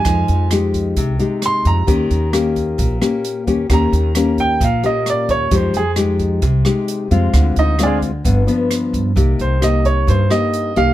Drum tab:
HH |xxxxxxxx|xxxxxxxx|xxxxxxxx|xxxxxxxx|
SD |r-r---r-|--r--r--|r-r---r-|--r--r--|
BD |o--oo--o|o--oo--o|o--oo--o|o--oo--o|

HH |xxxxxxxx|xxxxxxxx|
SD |r-r---r-|--r--r--|
BD |o--oo--o|o--oo--o|